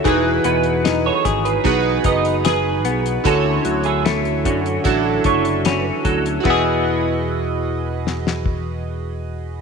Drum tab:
RD |----------------|----------------|x---------------|
HH |x-xxx-xxx-xxx-xx|x-xxxxxxx-xxx-xx|----------------|
SD |----o-o-----o---|----o-------o---|--------oo------|
BD |o-----o-o-o-----|o-----o-o-o---o-|o---------o-----|